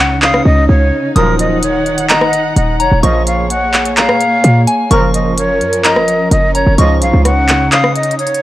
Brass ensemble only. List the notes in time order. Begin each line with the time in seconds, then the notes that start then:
1.16 F#2 A#2 F3
3.03 A#2 C#3 F3
4.91 A#2 C#3 F3
6.78 G#2 C#3 F3